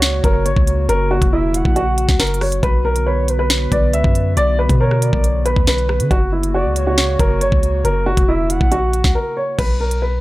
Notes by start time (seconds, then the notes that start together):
Already playing: C#2 C#3 A#3 F#4 C#5
0.02 snare, closed hi-hat
0.24 F#1 A#4, kick, closed hi-hat
0.46 G1 C#5, closed hi-hat
0.57 C#2, kick
0.67 closed hi-hat
0.89 F#1 A#4, closed hi-hat
1.11 F#4
1.22 E1, kick, closed hi-hat
1.33 E4 E5
1.54 F#5, closed hi-hat
1.65 A#1, kick
1.76 F#4, closed hi-hat
1.98 closed hi-hat
2.09 C#2, kick, snare
2.19 F#1 A#4, snare, closed hi-hat
2.27 closed hi-hat
2.34 closed hi-hat
2.41 C#5, cross-stick, open hi-hat
2.52 closed hi-hat
2.63 B1 D3 B3 B4, kick, closed hi-hat
2.85 A#4
2.96 closed hi-hat
3.06 B4 C#5
3.28 B4, closed hi-hat
3.39 B4
3.50 snare, closed hi-hat
3.72 B1 D5, kick, closed hi-hat
3.93 C#2 E5, closed hi-hat
4.04 F#2, kick
4.15 closed hi-hat
4.37 B1 D5, closed hi-hat
4.59 B4
4.69 B2, kick, closed hi-hat
4.80 A#4 C#5
4.91 cross-stick
5.02 D5, closed hi-hat
5.13 B1, kick
5.24 closed hi-hat
5.46 A#1 B4, closed hi-hat
5.56 D2, kick
5.67 B1 B4, snare, closed hi-hat
5.78 closed hi-hat
5.89 cross-stick
6.00 D3, closed hi-hat
6.11 F#1 C#3 A#3 F#4, kick, closed hi-hat
6.32 E4
6.43 closed hi-hat
6.54 F#4 D5
6.65 C#2
6.76 C#5, closed hi-hat
6.87 F#4
6.98 snare, closed hi-hat
7.19 F#1 A#4, kick, closed hi-hat
7.41 G1 C#5, closed hi-hat
7.52 C#2, kick
7.63 closed hi-hat
7.85 F#1 A#4, closed hi-hat
8.06 F#4
8.17 E1, kick, closed hi-hat
8.28 E4 E5
8.50 F#5, closed hi-hat
8.61 A#1, kick
8.72 F#4, closed hi-hat
8.93 closed hi-hat
9.04 C#2, kick, snare
9.15 A#4
9.37 C#5
9.58 B1 B4, kick, closed hi-hat, crash
9.80 A#4
9.91 closed hi-hat
10.02 B4